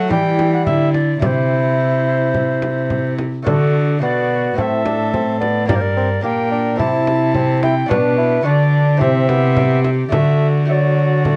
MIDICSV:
0, 0, Header, 1, 7, 480
1, 0, Start_track
1, 0, Tempo, 556586
1, 1053, Time_signature, 4, 2, 24, 8
1, 9799, End_track
2, 0, Start_track
2, 0, Title_t, "Recorder"
2, 0, Program_c, 0, 74
2, 0, Note_on_c, 0, 78, 89
2, 88, Note_off_c, 0, 78, 0
2, 93, Note_on_c, 0, 79, 93
2, 445, Note_off_c, 0, 79, 0
2, 462, Note_on_c, 0, 78, 78
2, 560, Note_off_c, 0, 78, 0
2, 566, Note_on_c, 0, 76, 79
2, 794, Note_off_c, 0, 76, 0
2, 799, Note_on_c, 0, 74, 72
2, 1042, Note_off_c, 0, 74, 0
2, 1049, Note_on_c, 0, 74, 64
2, 1084, Note_on_c, 0, 72, 70
2, 1093, Note_off_c, 0, 74, 0
2, 2708, Note_off_c, 0, 72, 0
2, 2979, Note_on_c, 0, 70, 63
2, 3007, Note_on_c, 0, 69, 68
2, 3015, Note_off_c, 0, 70, 0
2, 3428, Note_off_c, 0, 69, 0
2, 3466, Note_on_c, 0, 74, 77
2, 3935, Note_off_c, 0, 74, 0
2, 3941, Note_on_c, 0, 78, 79
2, 3978, Note_on_c, 0, 76, 86
2, 3987, Note_off_c, 0, 78, 0
2, 4647, Note_off_c, 0, 76, 0
2, 4653, Note_on_c, 0, 74, 75
2, 4892, Note_off_c, 0, 74, 0
2, 4897, Note_on_c, 0, 74, 78
2, 4965, Note_on_c, 0, 72, 69
2, 4978, Note_off_c, 0, 74, 0
2, 5012, Note_on_c, 0, 74, 72
2, 5025, Note_off_c, 0, 72, 0
2, 5376, Note_off_c, 0, 74, 0
2, 5380, Note_on_c, 0, 79, 87
2, 5844, Note_off_c, 0, 79, 0
2, 5849, Note_on_c, 0, 81, 90
2, 6555, Note_off_c, 0, 81, 0
2, 6575, Note_on_c, 0, 79, 84
2, 6810, Note_on_c, 0, 71, 78
2, 6823, Note_off_c, 0, 79, 0
2, 7287, Note_off_c, 0, 71, 0
2, 7292, Note_on_c, 0, 74, 89
2, 7754, Note_off_c, 0, 74, 0
2, 7759, Note_on_c, 0, 76, 89
2, 8467, Note_off_c, 0, 76, 0
2, 8483, Note_on_c, 0, 76, 70
2, 8538, Note_off_c, 0, 76, 0
2, 8719, Note_on_c, 0, 76, 85
2, 9031, Note_off_c, 0, 76, 0
2, 9213, Note_on_c, 0, 76, 60
2, 9245, Note_on_c, 0, 74, 66
2, 9254, Note_off_c, 0, 76, 0
2, 9799, Note_off_c, 0, 74, 0
2, 9799, End_track
3, 0, Start_track
3, 0, Title_t, "Viola"
3, 0, Program_c, 1, 41
3, 0, Note_on_c, 1, 66, 60
3, 91, Note_on_c, 1, 64, 63
3, 104, Note_off_c, 1, 66, 0
3, 567, Note_off_c, 1, 64, 0
3, 572, Note_on_c, 1, 64, 55
3, 1044, Note_off_c, 1, 64, 0
3, 1055, Note_on_c, 1, 64, 58
3, 2778, Note_off_c, 1, 64, 0
3, 2994, Note_on_c, 1, 66, 54
3, 3437, Note_off_c, 1, 66, 0
3, 3467, Note_on_c, 1, 66, 58
3, 3950, Note_on_c, 1, 69, 55
3, 3963, Note_off_c, 1, 66, 0
3, 4898, Note_off_c, 1, 69, 0
3, 4903, Note_on_c, 1, 70, 50
3, 5372, Note_off_c, 1, 70, 0
3, 5376, Note_on_c, 1, 70, 54
3, 5851, Note_on_c, 1, 64, 63
3, 5864, Note_off_c, 1, 70, 0
3, 6804, Note_on_c, 1, 62, 54
3, 6817, Note_off_c, 1, 64, 0
3, 7284, Note_off_c, 1, 62, 0
3, 7289, Note_on_c, 1, 62, 62
3, 7773, Note_on_c, 1, 67, 60
3, 7786, Note_off_c, 1, 62, 0
3, 8742, Note_on_c, 1, 66, 51
3, 8755, Note_off_c, 1, 67, 0
3, 9215, Note_off_c, 1, 66, 0
3, 9220, Note_on_c, 1, 66, 58
3, 9799, Note_off_c, 1, 66, 0
3, 9799, End_track
4, 0, Start_track
4, 0, Title_t, "Lute"
4, 0, Program_c, 2, 24
4, 68, Note_on_c, 2, 64, 42
4, 83, Note_on_c, 2, 67, 48
4, 90, Note_on_c, 2, 52, 51
4, 536, Note_off_c, 2, 52, 0
4, 577, Note_on_c, 2, 50, 49
4, 1011, Note_off_c, 2, 64, 0
4, 1019, Note_off_c, 2, 67, 0
4, 1021, Note_off_c, 2, 50, 0
4, 1030, Note_on_c, 2, 64, 41
4, 1044, Note_on_c, 2, 67, 43
4, 1054, Note_on_c, 2, 48, 49
4, 2777, Note_off_c, 2, 48, 0
4, 2939, Note_off_c, 2, 64, 0
4, 2946, Note_off_c, 2, 67, 0
4, 2954, Note_on_c, 2, 57, 44
4, 2967, Note_on_c, 2, 62, 43
4, 2976, Note_on_c, 2, 66, 41
4, 2987, Note_on_c, 2, 50, 53
4, 3429, Note_off_c, 2, 57, 0
4, 3432, Note_off_c, 2, 50, 0
4, 3439, Note_on_c, 2, 57, 39
4, 3442, Note_off_c, 2, 62, 0
4, 3447, Note_off_c, 2, 66, 0
4, 3452, Note_on_c, 2, 62, 43
4, 3463, Note_on_c, 2, 66, 44
4, 3475, Note_on_c, 2, 47, 47
4, 3904, Note_off_c, 2, 57, 0
4, 3914, Note_off_c, 2, 47, 0
4, 3915, Note_on_c, 2, 57, 37
4, 3923, Note_off_c, 2, 62, 0
4, 3927, Note_on_c, 2, 60, 43
4, 3928, Note_off_c, 2, 66, 0
4, 3936, Note_on_c, 2, 64, 42
4, 3946, Note_on_c, 2, 45, 43
4, 4858, Note_off_c, 2, 57, 0
4, 4865, Note_off_c, 2, 60, 0
4, 4869, Note_off_c, 2, 45, 0
4, 4869, Note_off_c, 2, 64, 0
4, 4878, Note_on_c, 2, 58, 47
4, 4893, Note_on_c, 2, 62, 45
4, 4903, Note_on_c, 2, 67, 44
4, 4912, Note_on_c, 2, 43, 47
4, 5347, Note_off_c, 2, 58, 0
4, 5352, Note_off_c, 2, 43, 0
4, 5356, Note_off_c, 2, 62, 0
4, 5357, Note_on_c, 2, 58, 45
4, 5366, Note_on_c, 2, 62, 44
4, 5367, Note_off_c, 2, 67, 0
4, 5377, Note_on_c, 2, 67, 42
4, 5386, Note_on_c, 2, 46, 48
4, 5824, Note_off_c, 2, 58, 0
4, 5826, Note_off_c, 2, 46, 0
4, 5828, Note_on_c, 2, 60, 43
4, 5834, Note_off_c, 2, 62, 0
4, 5836, Note_off_c, 2, 67, 0
4, 5837, Note_on_c, 2, 64, 42
4, 5846, Note_on_c, 2, 67, 41
4, 5860, Note_on_c, 2, 48, 48
4, 6768, Note_off_c, 2, 60, 0
4, 6773, Note_off_c, 2, 64, 0
4, 6777, Note_off_c, 2, 67, 0
4, 6779, Note_off_c, 2, 48, 0
4, 6780, Note_on_c, 2, 62, 50
4, 6795, Note_on_c, 2, 66, 50
4, 6805, Note_on_c, 2, 71, 51
4, 6816, Note_on_c, 2, 47, 57
4, 7254, Note_off_c, 2, 62, 0
4, 7255, Note_off_c, 2, 47, 0
4, 7261, Note_off_c, 2, 66, 0
4, 7264, Note_on_c, 2, 62, 44
4, 7270, Note_off_c, 2, 71, 0
4, 7272, Note_on_c, 2, 66, 51
4, 7286, Note_on_c, 2, 71, 48
4, 7294, Note_on_c, 2, 50, 52
4, 7733, Note_off_c, 2, 50, 0
4, 7733, Note_off_c, 2, 62, 0
4, 7736, Note_on_c, 2, 60, 47
4, 7740, Note_off_c, 2, 66, 0
4, 7743, Note_on_c, 2, 64, 47
4, 7749, Note_off_c, 2, 71, 0
4, 7753, Note_on_c, 2, 67, 44
4, 7767, Note_on_c, 2, 48, 45
4, 8682, Note_off_c, 2, 60, 0
4, 8686, Note_off_c, 2, 64, 0
4, 8691, Note_off_c, 2, 67, 0
4, 8693, Note_off_c, 2, 48, 0
4, 8698, Note_on_c, 2, 57, 44
4, 8711, Note_on_c, 2, 66, 44
4, 8735, Note_on_c, 2, 50, 47
4, 9178, Note_off_c, 2, 57, 0
4, 9188, Note_off_c, 2, 66, 0
4, 9188, Note_on_c, 2, 57, 41
4, 9199, Note_on_c, 2, 66, 42
4, 9799, Note_off_c, 2, 50, 0
4, 9799, Note_off_c, 2, 57, 0
4, 9799, Note_off_c, 2, 66, 0
4, 9799, End_track
5, 0, Start_track
5, 0, Title_t, "Bassoon"
5, 0, Program_c, 3, 70
5, 0, Note_on_c, 3, 57, 66
5, 93, Note_off_c, 3, 57, 0
5, 105, Note_on_c, 3, 55, 75
5, 802, Note_off_c, 3, 55, 0
5, 1055, Note_on_c, 3, 64, 75
5, 2710, Note_off_c, 3, 64, 0
5, 2996, Note_on_c, 3, 62, 68
5, 3438, Note_off_c, 3, 62, 0
5, 3470, Note_on_c, 3, 59, 65
5, 3954, Note_on_c, 3, 60, 54
5, 3967, Note_off_c, 3, 59, 0
5, 4182, Note_off_c, 3, 60, 0
5, 4188, Note_on_c, 3, 62, 57
5, 4420, Note_off_c, 3, 62, 0
5, 4428, Note_on_c, 3, 60, 52
5, 4652, Note_off_c, 3, 60, 0
5, 4657, Note_on_c, 3, 59, 59
5, 4895, Note_off_c, 3, 59, 0
5, 4903, Note_on_c, 3, 58, 60
5, 5011, Note_off_c, 3, 58, 0
5, 5147, Note_on_c, 3, 60, 57
5, 5254, Note_off_c, 3, 60, 0
5, 5382, Note_on_c, 3, 58, 59
5, 5615, Note_off_c, 3, 58, 0
5, 5619, Note_on_c, 3, 62, 63
5, 5853, Note_off_c, 3, 62, 0
5, 5861, Note_on_c, 3, 64, 69
5, 6327, Note_off_c, 3, 64, 0
5, 6337, Note_on_c, 3, 60, 59
5, 6570, Note_off_c, 3, 60, 0
5, 6582, Note_on_c, 3, 64, 69
5, 6688, Note_off_c, 3, 64, 0
5, 6815, Note_on_c, 3, 62, 67
5, 7047, Note_off_c, 3, 62, 0
5, 7053, Note_on_c, 3, 64, 68
5, 7288, Note_on_c, 3, 62, 66
5, 7301, Note_off_c, 3, 64, 0
5, 7756, Note_off_c, 3, 62, 0
5, 7761, Note_on_c, 3, 60, 68
5, 7997, Note_off_c, 3, 60, 0
5, 8007, Note_on_c, 3, 59, 61
5, 8475, Note_off_c, 3, 59, 0
5, 8732, Note_on_c, 3, 57, 59
5, 9134, Note_off_c, 3, 57, 0
5, 9223, Note_on_c, 3, 54, 62
5, 9666, Note_off_c, 3, 54, 0
5, 9705, Note_on_c, 3, 57, 61
5, 9799, Note_off_c, 3, 57, 0
5, 9799, End_track
6, 0, Start_track
6, 0, Title_t, "Cello"
6, 0, Program_c, 4, 42
6, 0, Note_on_c, 4, 54, 61
6, 93, Note_on_c, 4, 52, 64
6, 106, Note_off_c, 4, 54, 0
6, 573, Note_on_c, 4, 50, 55
6, 586, Note_off_c, 4, 52, 0
6, 1046, Note_off_c, 4, 50, 0
6, 1052, Note_on_c, 4, 48, 66
6, 2776, Note_off_c, 4, 48, 0
6, 2983, Note_on_c, 4, 50, 63
6, 3466, Note_on_c, 4, 47, 55
6, 3479, Note_off_c, 4, 50, 0
6, 3940, Note_off_c, 4, 47, 0
6, 3945, Note_on_c, 4, 45, 58
6, 4904, Note_on_c, 4, 43, 63
6, 4917, Note_off_c, 4, 45, 0
6, 5382, Note_off_c, 4, 43, 0
6, 5389, Note_on_c, 4, 46, 56
6, 5854, Note_on_c, 4, 48, 59
6, 5867, Note_off_c, 4, 46, 0
6, 6805, Note_off_c, 4, 48, 0
6, 6811, Note_on_c, 4, 47, 68
6, 7278, Note_off_c, 4, 47, 0
6, 7285, Note_on_c, 4, 50, 64
6, 7760, Note_on_c, 4, 48, 72
6, 7773, Note_off_c, 4, 50, 0
6, 8723, Note_off_c, 4, 48, 0
6, 8730, Note_on_c, 4, 50, 64
6, 9799, Note_off_c, 4, 50, 0
6, 9799, End_track
7, 0, Start_track
7, 0, Title_t, "Frame drum"
7, 91, Note_on_c, 9, 64, 47
7, 177, Note_off_c, 9, 64, 0
7, 337, Note_on_c, 9, 64, 45
7, 423, Note_off_c, 9, 64, 0
7, 575, Note_on_c, 9, 64, 53
7, 661, Note_off_c, 9, 64, 0
7, 814, Note_on_c, 9, 64, 43
7, 901, Note_off_c, 9, 64, 0
7, 1054, Note_on_c, 9, 64, 66
7, 1140, Note_off_c, 9, 64, 0
7, 2022, Note_on_c, 9, 64, 41
7, 2108, Note_off_c, 9, 64, 0
7, 2262, Note_on_c, 9, 64, 45
7, 2348, Note_off_c, 9, 64, 0
7, 2503, Note_on_c, 9, 64, 49
7, 2589, Note_off_c, 9, 64, 0
7, 2747, Note_on_c, 9, 64, 44
7, 2833, Note_off_c, 9, 64, 0
7, 2989, Note_on_c, 9, 64, 61
7, 3075, Note_off_c, 9, 64, 0
7, 3951, Note_on_c, 9, 64, 46
7, 4037, Note_off_c, 9, 64, 0
7, 4188, Note_on_c, 9, 64, 48
7, 4274, Note_off_c, 9, 64, 0
7, 4430, Note_on_c, 9, 64, 47
7, 4516, Note_off_c, 9, 64, 0
7, 4671, Note_on_c, 9, 64, 44
7, 4757, Note_off_c, 9, 64, 0
7, 4908, Note_on_c, 9, 64, 69
7, 4994, Note_off_c, 9, 64, 0
7, 5858, Note_on_c, 9, 64, 47
7, 5944, Note_off_c, 9, 64, 0
7, 6100, Note_on_c, 9, 64, 46
7, 6186, Note_off_c, 9, 64, 0
7, 6334, Note_on_c, 9, 64, 49
7, 6421, Note_off_c, 9, 64, 0
7, 6579, Note_on_c, 9, 64, 45
7, 6665, Note_off_c, 9, 64, 0
7, 6821, Note_on_c, 9, 64, 63
7, 6908, Note_off_c, 9, 64, 0
7, 7771, Note_on_c, 9, 64, 45
7, 7857, Note_off_c, 9, 64, 0
7, 8011, Note_on_c, 9, 64, 48
7, 8097, Note_off_c, 9, 64, 0
7, 8249, Note_on_c, 9, 64, 53
7, 8336, Note_off_c, 9, 64, 0
7, 8491, Note_on_c, 9, 64, 42
7, 8577, Note_off_c, 9, 64, 0
7, 8729, Note_on_c, 9, 64, 66
7, 8815, Note_off_c, 9, 64, 0
7, 9702, Note_on_c, 9, 64, 49
7, 9789, Note_off_c, 9, 64, 0
7, 9799, End_track
0, 0, End_of_file